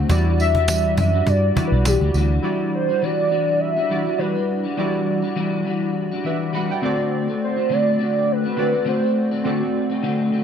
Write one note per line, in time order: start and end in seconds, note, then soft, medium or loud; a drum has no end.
0.00 0.12 A3 medium
0.00 0.10 C4 medium
0.00 0.11 D4 medium
0.00 0.10 F#4 medium
0.00 0.12 C5 medium
0.08 0.94 E2 loud
0.08 0.37 E3 medium
0.08 1.00 G3 medium
0.08 0.38 G3 medium
0.08 0.38 D4 loud
0.08 1.00 E4 medium
0.08 1.00 F#4 medium
0.08 0.39 F#4 loud
0.08 1.01 D5 medium
0.08 cajon bass loud
0.08 tambourine soft
0.38 0.55 E3 medium
0.38 0.55 G3 medium
0.38 0.55 D4 medium
0.38 0.54 F#4 medium
0.38 0.94 E5 loud
0.38 cajon slap soft
0.38 tambourine soft
0.55 0.68 G3 soft
0.55 0.68 D4 medium
0.55 0.69 F#4 medium
0.55 cajon bass medium
0.68 0.96 E3 medium
0.68 0.97 G3 medium
0.68 0.98 D4 medium
0.68 0.98 F#4 medium
0.68 cajon slap loud
0.68 tambourine medium
0.97 1.21 F#2 medium
0.97 1.14 E3 medium
0.97 1.14 G3 medium
0.97 1.13 D4 medium
0.97 1.12 F#4 medium
0.97 1.30 E5 loud
0.97 cajon bass loud
0.97 tambourine soft
1.13 1.55 G3 medium
1.13 1.56 D4 medium
1.13 1.56 F#4 medium
1.26 1.50 G2 medium
1.26 1.67 D5 loud
1.26 cajon bass medium
1.26 tambourine soft
1.55 1.72 E3 medium
1.55 2.24 G3 medium
1.55 1.72 G3 medium
1.55 1.72 D4 medium
1.55 2.25 E4 medium
1.55 2.25 F#4 medium
1.55 1.70 F#4 medium
1.55 2.25 D5 medium
1.55 muted fingered electric bass stroke soft
1.55 cajon bass loud
1.55 tambourine soft
1.67 1.88 B4 medium
1.72 1.96 B1 loud
1.72 1.86 G3 soft
1.72 1.86 D4 medium
1.72 1.85 F#4 medium
1.85 2.02 E3 medium
1.85 2.02 G3 medium
1.85 2.02 D4 loud
1.85 2.00 F#4 loud
1.85 2.15 G4 medium
1.85 cajon slap loud
1.85 tambourine medium
2.01 2.12 D2 medium
2.01 2.14 G3 medium
2.01 2.15 D4 medium
2.01 2.15 F#4 medium
2.14 2.38 D2 medium
2.14 2.42 E3 medium
2.14 2.42 G3 medium
2.14 2.43 D4 medium
2.14 2.44 F#4 medium
2.14 cajon slap soft
2.14 tambourine soft
2.42 2.89 E3 medium
2.42 3.33 G3 medium
2.42 2.89 G3 medium
2.42 2.89 D4 medium
2.42 3.34 E4 medium
2.42 3.34 F#4 medium
2.42 2.87 F#4 medium
2.42 3.34 D5 medium
2.74 3.04 C5 medium
2.89 3.02 G3 soft
2.89 3.02 D4 soft
2.89 3.02 F#4 medium
3.02 3.28 E3 medium
3.02 3.30 G3 medium
3.02 3.30 D4 medium
3.02 3.31 F#4 medium
3.02 3.61 D5 loud
3.30 3.76 E3 medium
3.30 3.77 G3 medium
3.30 3.76 D4 medium
3.30 3.75 F#4 medium
3.60 4.20 E5 loud
3.76 3.89 G3 soft
3.76 3.90 D4 soft
3.76 3.90 F#4 medium
3.89 4.06 E3 medium
3.89 4.58 G3 medium
3.89 4.06 G3 medium
3.89 4.05 D4 medium
3.89 4.59 E4 medium
3.89 4.59 F#4 medium
3.89 4.05 F#4 medium
3.89 4.59 D5 medium
4.06 4.18 G3 soft
4.06 4.19 D4 soft
4.06 4.19 F#4 soft
4.18 4.35 E3 medium
4.18 4.35 G3 medium
4.18 4.35 D4 medium
4.18 4.34 F#4 medium
4.18 4.64 B4 medium
4.35 4.65 G3 soft
4.35 4.64 D4 medium
4.35 4.62 F#4 medium
4.64 4.76 G3 soft
4.64 4.77 D4 soft
4.64 4.77 F#4 medium
4.77 5.23 E3 medium
4.77 5.68 G3 medium
4.77 5.23 G3 medium
4.77 5.22 D4 medium
4.77 5.68 E4 medium
4.77 5.69 F#4 medium
4.77 5.21 F#4 medium
4.77 5.69 D5 medium
5.22 5.35 G3 medium
5.22 5.36 D4 medium
5.22 5.36 F#4 medium
5.36 5.63 E3 loud
5.36 5.65 G3 loud
5.36 5.65 D4 medium
5.36 5.66 F#4 loud
5.65 6.10 E3 medium
5.65 6.11 G3 medium
5.65 6.11 D4 medium
5.65 6.10 F#4 medium
6.12 6.24 G3 medium
6.12 6.25 D4 medium
6.12 6.24 F#4 medium
6.24 6.52 E3 medium
6.24 6.52 G3 medium
6.24 6.53 D4 medium
6.24 6.54 F#4 medium
6.24 6.53 B4 medium
6.24 6.53 E5 medium
6.53 6.69 E3 medium
6.53 6.69 G3 medium
6.53 6.70 D4 loud
6.53 6.68 F#4 loud
6.53 6.69 F#5 medium
6.53 6.69 B5 medium
6.69 6.82 G3 medium
6.69 6.82 D4 medium
6.69 6.82 F#4 medium
6.69 6.84 D5 medium
6.69 6.98 G5 medium
6.81 7.27 D3 medium
6.81 7.28 A3 medium
6.81 7.76 C4 medium
6.81 7.28 C4 medium
6.81 7.77 F#4 medium
6.81 7.27 F#4 loud
6.81 7.77 A4 medium
6.81 7.78 D5 loud
7.28 7.58 A3 soft
7.28 7.56 C4 soft
7.28 7.55 F#4 soft
7.44 7.74 C5 loud
7.56 7.69 A3 soft
7.56 7.70 C4 soft
7.56 7.70 F#4 medium
7.69 7.97 D3 medium
7.69 7.98 A3 medium
7.69 7.99 C4 medium
7.69 8.00 F#4 medium
7.69 8.33 D5 loud
7.98 8.44 D3 medium
7.98 8.45 A3 medium
7.98 8.45 C4 medium
7.98 8.42 F#4 medium
8.32 8.88 B4 loud
8.44 8.56 A3 soft
8.44 8.57 C4 soft
8.44 8.57 F#4 medium
8.56 8.73 D3 medium
8.56 8.73 A3 medium
8.56 9.26 C4 medium
8.56 8.72 C4 medium
8.56 9.26 F#4 medium
8.56 8.71 F#4 medium
8.56 9.27 A4 medium
8.56 9.27 D5 medium
8.73 8.85 A3 soft
8.73 8.85 C4 soft
8.73 8.85 F#4 medium
8.85 9.02 D3 medium
8.85 9.02 A3 medium
8.85 9.02 C4 medium
8.85 9.01 F#4 medium
8.85 9.30 C5 medium
9.02 9.33 A3 soft
9.02 9.31 C4 soft
9.02 9.30 F#4 medium
9.31 9.44 A3 soft
9.31 9.44 C4 soft
9.31 9.45 F#4 medium
9.44 9.61 D3 medium
9.44 9.61 A3 medium
9.44 10.35 C4 medium
9.44 9.60 C4 medium
9.44 10.35 F#4 medium
9.44 9.59 F#4 medium
9.44 10.36 A4 medium
9.44 10.36 D5 medium
9.60 9.91 A3 soft
9.60 9.90 C4 soft
9.60 9.88 F#4 medium
9.90 10.02 A3 soft
9.90 10.03 C4 medium
9.90 10.03 F#4 medium
10.03 10.31 D3 medium
10.03 10.31 A3 medium
10.03 10.32 C4 medium
10.03 10.32 F#4 medium
10.32 10.44 D3 medium
10.32 10.44 A3 medium
10.32 10.44 C4 medium
10.32 10.44 F#4 medium